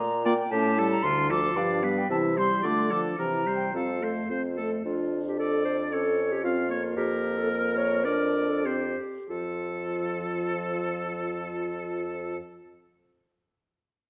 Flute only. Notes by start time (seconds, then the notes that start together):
0.00 A#5
0.26 G5
0.51 A5
0.92 A#5
1.03 C6
1.31 D6
1.57 F5
1.98 G5
2.11 A5
2.38 C6
2.66 D6
3.19 A#5
3.56 G5
3.75 F5